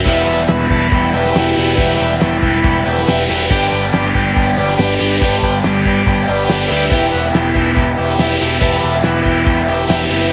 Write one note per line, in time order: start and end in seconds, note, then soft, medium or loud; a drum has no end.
0.04 0.24 E1 loud
0.04 1.34 E2 loud
0.04 0.71 B2 loud
0.04 0.49 E3 loud
0.04 0.50 G3 loud
0.04 0.51 B3 loud
0.04 0.22 B4 loud
0.04 0.23 E5 loud
0.04 0.23 G5 loud
0.04 kick loud
0.04 crash loud
0.08 0.51 E4 loud
0.25 0.45 E1 loud
0.25 0.43 B4 loud
0.25 0.44 E5 loud
0.25 0.44 A5 loud
0.25 open hi-hat medium
0.48 0.67 E1 medium
0.48 1.16 E3 medium
0.48 1.16 G3 medium
0.48 1.14 B3 medium
0.48 1.13 E4 medium
0.48 0.66 B4 medium
0.48 0.66 E5 medium
0.48 0.66 F#5 loud
0.48 snare loud
0.48 open hi-hat loud
0.70 0.88 E1 loud
0.70 0.87 B4 loud
0.70 0.88 E5 medium
0.70 0.88 A5 loud
0.70 kick medium
0.70 open hi-hat medium
0.92 1.10 E1 loud
0.92 1.10 B4 medium
0.92 1.10 E5 medium
0.92 1.10 G5 medium
0.92 kick loud
0.92 open hi-hat loud
1.13 1.31 E1 loud
1.13 1.36 G3 medium
1.13 1.36 B3 medium
1.13 1.36 E4 medium
1.13 1.30 B4 medium
1.13 1.30 E5 medium
1.13 1.31 G5 medium
1.13 open hi-hat medium
1.17 1.35 E3 medium
1.25 snare soft
1.31 1.53 E1 medium
1.31 1.76 E2 loud
1.31 1.77 B2 loud
1.31 1.50 B4 loud
1.31 1.50 E5 loud
1.31 1.51 G5 loud
1.31 open hi-hat loud
1.36 1.58 E3 loud
1.36 1.58 G3 loud
1.36 1.58 B3 loud
1.36 1.55 E4 loud
1.36 snare loud
1.51 1.71 B4 medium
1.51 1.71 E5 medium
1.51 1.72 G5 loud
1.56 1.75 E1 medium
1.56 1.77 E3 medium
1.56 1.79 G3 medium
1.56 1.79 B3 medium
1.56 1.79 E4 medium
1.56 open hi-hat medium
1.75 1.96 E1 medium
1.75 2.42 E2 loud
1.75 2.43 B2 loud
1.75 2.20 E3 loud
1.75 1.93 B4 loud
1.75 1.94 E5 loud
1.75 1.94 G5 loud
1.75 kick loud
1.75 open hi-hat medium
1.79 2.22 G3 loud
1.79 2.22 B3 loud
1.79 2.23 E4 loud
1.95 2.14 B4 loud
1.95 2.15 E5 loud
1.95 2.15 G5 loud
2.00 2.18 E1 medium
2.00 open hi-hat medium
2.19 2.39 E1 loud
2.19 2.87 E3 medium
2.19 2.87 G3 medium
2.19 2.85 B3 medium
2.19 2.37 B4 medium
2.19 2.37 E5 medium
2.19 2.38 G5 medium
2.19 snare loud
2.19 open hi-hat medium
2.24 2.84 E4 medium
2.42 2.60 E1 loud
2.42 2.59 B4 medium
2.42 2.59 E5 medium
2.42 2.60 G5 loud
2.42 kick medium
2.42 open hi-hat medium
2.62 2.82 E1 loud
2.62 2.80 B4 medium
2.62 2.80 E5 medium
2.62 2.81 G5 medium
2.62 kick loud
2.62 open hi-hat medium
2.83 3.04 E1 loud
2.83 3.08 B3 medium
2.83 3.08 E4 medium
2.83 3.01 B4 medium
2.83 3.02 E5 medium
2.83 3.02 G5 medium
2.83 open hi-hat medium
2.87 3.06 E3 medium
2.87 3.07 G3 medium
2.98 snare soft
3.06 3.25 E1 medium
3.06 3.48 E2 loud
3.06 3.49 B2 loud
3.06 3.30 E3 medium
3.06 3.30 G3 loud
3.06 3.29 B3 loud
3.06 3.27 E4 loud
3.06 3.23 B4 loud
3.06 3.23 E5 loud
3.06 3.24 G5 loud
3.06 snare loud
3.06 open hi-hat loud
3.28 3.47 E1 medium
3.28 3.50 E3 medium
3.28 3.51 G3 medium
3.28 3.51 B3 medium
3.28 3.49 E4 medium
3.28 3.45 B4 medium
3.28 3.45 E5 medium
3.28 3.46 G5 medium
3.28 open hi-hat medium
3.49 3.68 G1 loud
3.49 4.78 G2 medium
3.49 4.14 D3 loud
3.49 3.93 G3 loud
3.49 3.94 B3 loud
3.49 3.95 D4 loud
3.49 3.96 G4 loud
3.49 3.66 B4 loud
3.49 3.67 D5 loud
3.49 3.67 G5 loud
3.49 kick loud
3.49 crash loud
3.69 3.90 G1 medium
3.69 3.87 B4 loud
3.69 3.87 D5 loud
3.69 3.88 G5 loud
3.69 open hi-hat medium
3.92 4.11 G1 loud
3.92 4.59 G3 medium
3.92 4.59 B3 medium
3.92 4.57 D4 loud
3.92 4.09 B4 medium
3.92 4.09 D5 medium
3.92 4.10 G5 loud
3.92 snare loud
3.92 open hi-hat loud
3.96 4.57 G4 loud
4.14 4.32 G1 medium
4.14 4.31 B4 loud
4.14 4.31 D5 medium
4.14 4.31 G5 loud
4.14 kick medium
4.14 open hi-hat medium
4.33 4.54 G1 loud
4.33 4.51 B4 medium
4.33 4.51 D5 medium
4.33 4.52 G5 medium
4.33 kick loud
4.33 open hi-hat loud
4.57 4.75 G1 loud
4.57 4.79 G3 medium
4.57 4.79 B3 medium
4.57 4.79 D4 medium
4.57 4.81 G4 medium
4.57 4.73 B4 medium
4.57 4.74 D5 medium
4.57 4.74 G5 medium
4.57 open hi-hat medium
4.69 snare soft
4.77 4.97 G1 medium
4.77 5.21 G2 loud
4.77 5.21 D3 medium
4.77 5.03 G3 loud
4.77 5.02 B3 loud
4.77 5.00 D4 loud
4.77 5.00 G4 loud
4.77 4.94 B4 loud
4.77 4.95 D5 loud
4.77 4.94 G5 loud
4.77 snare loud
4.77 open hi-hat loud
4.99 5.18 G1 medium
4.99 5.24 B3 medium
4.99 5.24 D4 medium
4.99 5.25 G4 medium
4.99 5.16 B4 medium
4.99 5.16 D5 medium
4.99 5.17 G5 medium
4.99 open hi-hat medium
5.03 5.23 G3 medium
5.19 5.39 G1 medium
5.19 5.86 G2 loud
5.19 5.86 D3 medium
5.19 5.37 B4 loud
5.19 5.37 D5 loud
5.19 5.38 G5 loud
5.19 kick loud
5.19 open hi-hat medium
5.23 5.64 G3 loud
5.23 5.65 B3 medium
5.23 5.65 D4 loud
5.23 5.67 G4 loud
5.43 5.60 G1 loud
5.43 5.59 B4 loud
5.43 5.59 D5 loud
5.43 5.59 G5 loud
5.43 kick medium
5.43 open hi-hat medium
5.63 5.82 G1 loud
5.63 6.31 G3 medium
5.63 6.30 B3 medium
5.63 6.28 D4 medium
5.63 5.80 B4 medium
5.63 5.81 D5 medium
5.63 5.81 G5 medium
5.63 snare loud
5.63 open hi-hat loud
5.67 6.28 G4 loud
5.86 6.03 G1 medium
5.86 6.02 B4 medium
5.86 6.02 D5 medium
5.86 6.03 G5 loud
5.86 kick medium
5.86 open hi-hat medium
6.06 6.24 G1 loud
6.06 6.23 B4 medium
6.06 6.24 D5 medium
6.06 6.23 G5 loud
6.06 kick loud
6.06 open hi-hat loud
6.27 6.46 G1 medium
6.27 6.52 B3 medium
6.27 6.51 D4 medium
6.27 6.53 G4 medium
6.27 6.44 B4 medium
6.27 6.44 D5 medium
6.27 6.44 G5 medium
6.27 open hi-hat medium
6.31 6.51 G3 medium
6.46 6.67 G1 medium
6.46 6.64 B4 loud
6.46 6.65 D5 medium
6.46 6.65 G5 loud
6.46 snare loud
6.46 open hi-hat loud
6.50 6.91 G2 loud
6.50 6.91 D3 medium
6.50 6.73 G3 loud
6.50 6.72 B3 loud
6.50 6.70 D4 medium
6.50 6.70 G4 loud
6.68 6.88 D2 medium
6.68 6.91 D4 medium
6.68 6.94 G4 medium
6.68 6.86 B4 medium
6.68 6.86 D5 medium
6.68 6.88 E5 medium
6.68 6.86 G5 medium
6.68 open hi-hat medium
6.72 6.91 G3 medium
6.72 6.92 B3 medium
6.89 7.09 E1 medium
6.89 7.33 E3 medium
6.89 7.35 B3 loud
6.89 7.07 B4 loud
6.89 7.07 E5 loud
6.89 7.07 G5 loud
6.89 kick loud
6.89 crash loud
6.94 7.35 E4 loud
6.94 7.36 G4 loud
7.11 7.31 E1 medium
7.11 7.28 B4 loud
7.11 7.28 E5 loud
7.11 7.29 F#5 loud
7.11 open hi-hat medium
7.32 7.52 E1 loud
7.32 8.17 E3 medium
7.32 8.00 B3 medium
7.32 7.98 E4 loud
7.32 7.50 B4 medium
7.32 7.50 E5 medium
7.32 7.51 G5 medium
7.32 snare loud
7.32 open hi-hat medium
7.36 7.97 G4 medium
7.54 7.73 E1 medium
7.54 7.71 B4 loud
7.54 7.71 E5 medium
7.54 7.72 G5 loud
7.54 kick medium
7.54 open hi-hat medium
7.74 7.94 E1 loud
7.74 7.92 B4 medium
7.74 7.92 E5 medium
7.74 7.93 G5 medium
7.74 kick loud
7.74 open hi-hat loud
7.95 8.16 E1 medium
7.95 8.20 E4 medium
7.95 8.21 G4 medium
7.95 8.13 B4 medium
7.95 8.14 E5 medium
7.95 8.14 G5 medium
7.95 open hi-hat medium
8.00 8.19 B3 medium
8.18 8.37 E1 medium
8.18 8.59 E3 loud
8.18 8.41 B3 loud
8.18 8.40 E4 loud
8.18 8.39 G4 loud
8.18 8.36 B4 loud
8.18 8.37 E5 medium
8.18 snare loud
8.18 open hi-hat loud
8.22 8.37 G5 loud
8.40 8.58 E1 medium
8.40 8.61 B3 medium
8.40 8.61 E4 medium
8.40 8.63 G4 medium
8.40 8.57 B4 medium
8.40 8.57 E5 medium
8.40 8.58 G5 medium
8.40 open hi-hat medium
8.60 8.79 E1 medium
8.60 9.02 E3 medium
8.60 9.04 B3 loud
8.60 9.04 E4 loud
8.60 9.05 G4 loud
8.60 8.77 B4 loud
8.60 8.77 E5 loud
8.60 8.78 A5 loud
8.60 kick loud
8.60 open hi-hat medium
8.80 9.01 E1 medium
8.80 8.98 B4 loud
8.80 8.98 E5 loud
8.80 8.99 A5 loud
8.80 open hi-hat medium
9.03 9.22 E1 loud
9.03 9.87 E3 medium
9.03 9.70 B3 medium
9.03 9.69 E4 loud
9.03 9.67 G4 medium
9.03 9.20 B4 medium
9.03 9.20 E5 medium
9.03 9.20 F#5 loud
9.03 snare loud
9.03 open hi-hat loud
9.22 9.43 E1 medium
9.22 9.40 B4 medium
9.22 9.41 E5 medium
9.22 9.41 G5 loud
9.22 kick medium
9.22 open hi-hat medium
9.44 9.64 E1 loud
9.44 9.62 B4 medium
9.44 9.62 E5 medium
9.44 9.62 G5 medium
9.44 kick loud
9.44 open hi-hat medium
9.68 9.85 E1 loud
9.68 9.88 B3 medium
9.68 9.89 E4 medium
9.68 9.90 G4 medium
9.68 9.84 B4 medium
9.68 9.85 E5 medium
9.68 9.85 G5 medium
9.68 open hi-hat medium
9.87 10.06 E1 loud
9.87 10.30 E3 loud
9.87 10.12 B3 medium
9.87 10.10 E4 medium
9.87 10.09 G4 loud
9.87 10.05 B4 loud
9.87 10.05 E5 loud
9.87 10.05 G5 loud
9.87 snare loud
9.87 open hi-hat loud
10.10 10.32 F#1 medium
10.10 10.31 B3 medium
10.10 10.31 E4 medium
10.10 10.30 G4 medium
10.10 10.26 B4 medium
10.10 10.27 E5 medium
10.10 10.27 G5 medium
10.10 open hi-hat medium
10.29 10.33 B4 loud